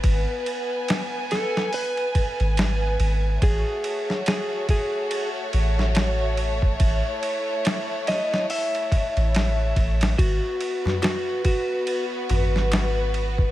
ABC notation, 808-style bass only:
X:1
M:4/4
L:1/16
Q:"Swing 16ths" 1/4=71
K:G#phr
V:1 name="808-style bass" clef=bass
G,,, z8 z2 G,,,3 G,,,2 | A,,, z8 z A,,,6 | A,,, z8 z2 A,,,3 A,,,2 | G,,, z8 z G,,,6 |]